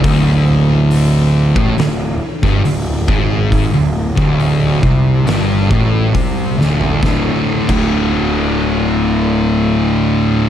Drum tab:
CC |----------------|----------------|---x------------|
HH |o---o---o---o---|o---o---o---o---|----------------|
SD |--------o--o----|--------o-----o-|o---------------|
FT |----------------|---------------o|----------------|
BD |o------o---o--o-|o--o--o---o-o---|o--o------------|